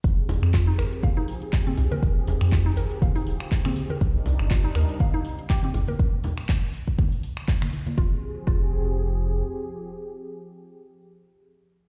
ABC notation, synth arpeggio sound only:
X:1
M:4/4
L:1/16
Q:"Swing 16ths" 1/4=121
K:Fdor
V:1 name="Synth arpeggio sound"
z4 F E B z f E z3 C z B | z4 F E B z f E z3 C z B | z4 F E B z f E z3 C z B | z16 |
F z3 F z8 z3 | z16 |]